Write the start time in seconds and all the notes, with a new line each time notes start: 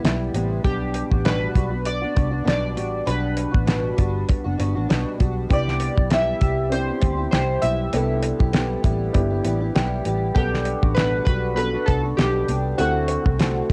0.04 B1 G3 B3 E4, snare, closed hi-hat
0.34 A1 C3 G3 B3 E4, closed hi-hat
0.63 B1 B2 B3 D4 G4, kick, closed hi-hat
0.94 closed hi-hat
1.11 A1 B3 D4 F#4, kick
1.25 B2 G3 B3 D4 F#4 B4, snare, closed hi-hat
1.54 B1 G3 B3 D4 F#4, kick, closed hi-hat
1.71 B3 D4 F#4
1.86 D5, closed hi-hat
2.02 B3 D4 F#4
2.14 C2 G3 B3 D4 F#4, kick, closed hi-hat
2.31 B3 D4 F#4
2.44 B1 B2 G3 B3 D4 F#4, closed hi-hat
2.48 D5, snare
2.74 A1 G3 B3 D4 F#4, closed hi-hat
3.05 B1 B2 G3 B3 D4 F#4 B4, closed hi-hat
3.37 closed hi-hat
3.52 A1 B3 D4 F#4, kick
3.66 B2 G3 B3 D4 F#4, snare, closed hi-hat
3.96 G1 G3 B3 D4 F#4, kick, closed hi-hat
4.29 kick, closed hi-hat
4.44 F#1 B3 D4 F#4
4.57 G1 G3 B3 D4 F#4, closed hi-hat
4.74 A1 B3 D4 F#4
4.88 B1 B2 G3 B3 D4 F#4, snare, closed hi-hat
5.18 B1 G3 B3 D4 F#4, kick, closed hi-hat
5.49 C2 C3 G3 B3 D4 E4 G4, kick, closed hi-hat
5.53 D5
5.68 snare
5.80 closed hi-hat
5.95 B1 B3 E4 G4, kick
6.10 G3 B3 E4 G4 E5, snare, closed hi-hat
6.39 C2 G3 B3 E4 G4, kick, closed hi-hat
6.70 C4 D4 E4 G4 C5, closed hi-hat
6.87 B3 E4 G4
7.00 D2 G3 B3 E4 G4, kick, closed hi-hat
7.17 B3 E4 G4
7.31 C2 C3 G3 E4 G4 C5, snare, closed hi-hat
7.61 B1 G3 B3 E4 G4 E5, closed hi-hat
7.93 C2 C3 G3 B3 D4 E4 G4 A4, closed hi-hat
8.22 closed hi-hat
8.39 B1 B3 E4 G4, kick
8.53 G3 B3 E4 G4, snare, closed hi-hat
8.82 A1 G3 B3 E4 G4, kick, closed hi-hat
9.13 G1 B3 D4 E4 G4, kick, closed hi-hat
9.30 B3 E4 G4
9.43 A1 G3 B3 E4 G4, closed hi-hat
9.61 B3 E4 G4
9.75 B1 G3 B3 E4 G4, snare, closed hi-hat
10.04 A1 G3 B3 E4 G4, closed hi-hat
10.34 B1 B2 G3 B3 D4 G4 A4 F#5, kick, closed hi-hat
10.54 snare
10.65 closed hi-hat
10.82 A1 B3 D4 F#4, kick
10.95 B2 G3 B3 D4 F#4 B4, snare, closed hi-hat
11.25 B1 G3 B3 D4 F#4 B4, kick, closed hi-hat
11.55 B3 D4 F#4 A4 B4, closed hi-hat
11.73 B3 D4 F#4
11.86 C2 G3 B3 D4 F#4 A4, kick, closed hi-hat
12.03 B3 D4 F#4
12.17 B1 B2 G3 B3 D4 G4, snare, closed hi-hat
12.47 C2 G3 B3 D4, closed hi-hat
12.77 D2 D3 A3 C4 E4 F#4 A4, closed hi-hat
13.08 closed hi-hat
13.24 C2 A3 C4 F#4, kick
13.38 D3 A3 C4 F#4, snare, closed hi-hat
13.69 D3 A3